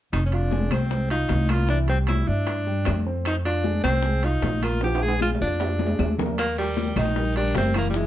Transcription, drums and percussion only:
0.13 high bongo medium
0.13 high conga soft
0.13 high timbale medium
0.13 claves medium
0.32 high bongo soft
0.32 high conga soft
0.32 high timbale medium
0.51 high bongo medium
0.51 high conga medium
0.71 high bongo soft
0.71 high conga medium
0.71 high timbale medium
0.71 claves medium
0.91 high bongo medium
0.91 high conga soft
1.10 high bongo soft
1.10 high conga soft
1.10 high timbale medium
1.29 high bongo medium
1.29 low bongo medium
1.29 high conga medium
1.29 high timbale medium
1.49 high conga medium
1.49 high timbale medium
1.49 claves medium
1.69 high bongo medium
1.88 high bongo soft
1.88 high conga soft
1.88 high timbale medium
2.07 high bongo medium
2.07 high conga medium
2.07 high timbale medium
2.07 claves medium
2.47 high bongo medium
2.47 high conga soft
2.47 high timbale medium
2.67 high bongo soft
2.67 high conga soft
2.85 high bongo medium
2.85 low bongo medium
2.85 high conga medium
2.85 high timbale medium
2.85 low timbale medium
2.85 claves medium
3.06 high bongo soft
3.25 high bongo medium
3.25 high conga soft
3.25 high timbale medium
3.25 claves medium
3.45 high bongo soft
3.45 high conga soft
3.45 high timbale medium
3.64 high bongo medium
3.64 high conga medium
3.83 high bongo soft
3.83 high conga medium
3.83 high timbale medium
3.83 claves medium
4.03 high bongo medium
4.03 high conga soft
4.23 high bongo soft
4.23 high conga soft
4.23 high timbale medium
4.42 high bongo medium
4.42 low bongo medium
4.42 high conga medium
4.42 high timbale medium
4.42 low timbale medium
4.62 high conga medium
4.62 high timbale medium
4.62 claves medium
4.81 high bongo medium
4.81 high timbale medium
4.95 high timbale medium
5.02 high bongo soft
5.08 high timbale medium
5.21 high bongo medium
5.21 high conga medium
5.21 claves medium
5.35 low timbale medium
5.60 high bongo medium
5.60 high conga soft
5.60 low timbale medium
5.79 high bongo medium
5.79 high conga medium
5.86 low timbale medium
5.99 low bongo medium
5.99 high conga medium
5.99 low timbale medium
5.99 claves medium
6.19 low bongo medium
6.19 low conga medium
6.26 low timbale medium
6.37 high bongo medium
6.37 high conga soft
6.37 high timbale loud
6.37 long guiro medium
6.37 claves medium
6.57 high bongo soft
6.57 high conga soft
6.57 high timbale medium
6.77 high bongo medium
6.77 high conga medium
6.77 short guiro medium
6.96 high bongo soft
6.96 high conga medium
6.96 high timbale medium
6.96 short guiro medium
6.96 claves medium
7.16 high bongo medium
7.16 long guiro medium
7.36 high bongo soft
7.36 high conga soft
7.36 high timbale medium
7.55 high bongo medium
7.55 low bongo medium
7.55 high conga medium
7.55 high timbale medium
7.55 low timbale medium
7.55 short guiro medium
7.74 high conga medium
7.74 high timbale medium
7.74 short guiro medium
7.74 claves medium
7.94 high bongo medium
7.94 high conga soft
7.94 long guiro medium

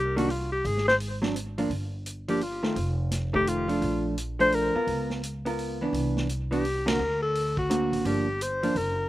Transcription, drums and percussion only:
0.18 open hi-hat soft
0.30 open hi-hat soft
0.65 open hi-hat soft
0.77 snare soft
0.88 snare medium
1.00 open hi-hat medium
1.23 snare medium
1.36 closed hi-hat medium
1.58 open hi-hat soft
1.71 open hi-hat soft
2.06 closed hi-hat medium
2.28 open hi-hat soft
2.41 open hi-hat soft
2.63 snare soft
2.76 open hi-hat soft
3.11 snare soft
3.11 closed hi-hat medium
3.34 kick soft
3.47 closed hi-hat medium
3.69 open hi-hat soft
3.82 open hi-hat soft
4.18 closed hi-hat medium
4.40 open hi-hat soft
4.52 open hi-hat soft
4.88 open hi-hat soft
5.10 snare soft
5.23 closed hi-hat medium
5.46 open hi-hat soft
5.59 open hi-hat soft
5.94 open hi-hat soft
6.17 snare soft
6.29 closed hi-hat medium
6.52 open hi-hat soft
6.65 open hi-hat soft
6.88 snare medium
6.88 ride medium
7.35 open hi-hat medium
7.57 kick medium
7.71 closed hi-hat medium
7.93 open hi-hat soft
8.05 open hi-hat soft
8.41 closed hi-hat medium
8.63 open hi-hat soft
8.76 open hi-hat soft

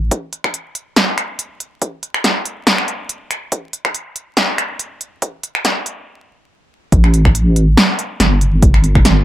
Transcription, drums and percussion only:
0.11 kick loud
0.11 closed hi-hat medium
0.33 closed hi-hat soft
0.44 finger snap medium
0.44 kick medium
0.54 closed hi-hat medium
0.75 closed hi-hat medium
0.96 snare loud
0.96 closed hi-hat medium
1.18 finger snap medium
1.18 closed hi-hat soft
1.39 closed hi-hat medium
1.60 closed hi-hat medium
1.82 kick loud
1.82 closed hi-hat medium
2.03 closed hi-hat medium
2.14 finger snap medium
2.24 snare medium
2.24 closed hi-hat medium
2.45 closed hi-hat medium
2.67 snare loud
2.67 closed hi-hat medium
2.78 finger snap medium
2.88 closed hi-hat medium
3.09 closed hi-hat medium
3.31 finger snap medium
3.31 closed hi-hat medium
3.52 kick loud
3.52 closed hi-hat medium
3.73 closed hi-hat medium
3.85 finger snap medium
3.85 kick medium
3.94 closed hi-hat medium
4.16 closed hi-hat medium
4.37 snare loud
4.37 closed hi-hat medium
4.58 finger snap medium
4.58 closed hi-hat soft
4.79 closed hi-hat medium
5.01 closed hi-hat medium
5.22 kick loud
5.22 closed hi-hat medium
5.43 closed hi-hat medium
5.55 finger snap medium
5.65 snare medium
5.65 closed hi-hat medium
5.86 closed hi-hat medium
6.92 kick loud
6.92 closed hi-hat medium
7.04 finger snap medium
7.14 closed hi-hat medium
7.25 finger snap medium
7.25 kick medium
7.35 closed hi-hat medium
7.56 closed hi-hat medium
7.77 snare loud
7.77 closed hi-hat medium
7.99 closed hi-hat medium
8.20 snare medium
8.20 closed hi-hat medium
8.41 closed hi-hat medium
8.63 kick loud
8.63 closed hi-hat medium
8.74 finger snap medium
8.84 closed hi-hat medium
8.95 finger snap medium
8.95 kick medium
9.05 snare medium
9.05 closed hi-hat medium

